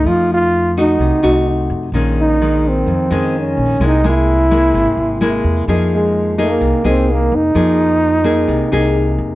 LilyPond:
<<
  \new Staff \with { instrumentName = "Trombone" } { \time 4/4 \key f \minor \tempo 4 = 128 f'8 f'4 ees'2 r8 | r8 ees'4 c'4. des'4 | ees'8 e'2. r8 | r8 aes4 bes4 c'8 bes8 ees'8~ |
ees'2.~ ees'8 r8 | }
  \new Staff \with { instrumentName = "Nylon-string guitar" } { \time 4/4 \key f \minor << { <a ees'>4. <a ees' ges'>4 <a ees' ges'>4. | <ees aes des'>4 <ees aes>4. <ees aes des'>4. | <gis bes e'>8 <gis bes e'>4 <gis bes e'>4. <gis bes e'>4 | <bes ees' aes'>4. <bes ees' aes'>4 <bes ees' aes'>4. |
<bes ees' aes'>4. <bes ees' aes'>4 <bes ees' aes'>4. | } \\ { f2 c2 | bes,2 f,2 | c2 c2 | f2 c2 |
f2 c2 | } >> }
  \new Staff \with { instrumentName = "Upright bass" } { \clef bass \time 4/4 \key f \minor f,2 c,16 r16 c,4 f,8 | bes,,2 f,16 r16 f,4 bes,,8 | c,2 gis,,16 r16 gis,,4 e,8 | f,2 c,16 r16 c,4 f,8 |
f,2 c,16 r16 c,4 f,8 | }
>>